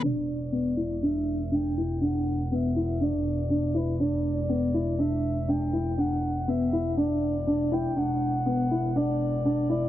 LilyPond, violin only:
\new Staff \with { instrumentName = "Violin" } { \time 4/4 \key e \minor \tempo 4 = 121 d''2 e''4 g''4 | fis''4 e''4 d''4. b'8 | d''2 e''4 g''4 | fis''4 e''4 d''4. g''8 |
fis''2 d''4. d''8 | }